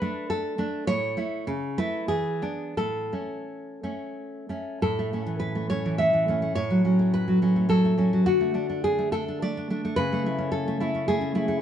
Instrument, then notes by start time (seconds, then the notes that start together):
nylon-string guitar
Already playing: B4
0.02 A3 D4
0.30 A4
0.58 A3 D4
0.87 A2 C#5
1.17 A3 E4
1.47 C#3
1.78 A3 E4 B4
2.08 E3 G#4
2.42 B3 D4
2.77 A2 A4
3.13 A3 C#4
3.83 A3 C#4
4.49 A3 C#4
4.82 A2 A4
4.99 A3
5.13 A3 C#4
5.26 E3
5.40 B4
5.55 A3
5.70 A3 C#4 C#5
5.86 E3
5.98 A3 E5
6.13 E3
6.28 A3 C#4
6.42 A3
6.55 A2 C#5
6.70 F#3
6.85 F#3 C#4
6.99 A3
7.14 B4
7.28 F#3
7.42 F#3 C#4
7.56 A3
7.69 F#3 A4
7.85 A3
7.98 F#3 C#4
8.13 F#3
8.26 D3 F#4
8.41 A3
8.54 A3 D4
8.69 D4
8.84 G#4
8.99 A3
9.12 A3 D4 A4
9.28 D4
9.42 A3 D5
9.57 D4
9.70 A3 D4
9.85 A3
9.96 C#3 B4
10.13 A3
10.26 A3 E4
10.38 C#4
10.52 A4
10.68 A3
10.80 A3 E4
10.95 C#4
11.08 A3 G#4
11.21 C#4
11.35 A3 E4
11.48 A3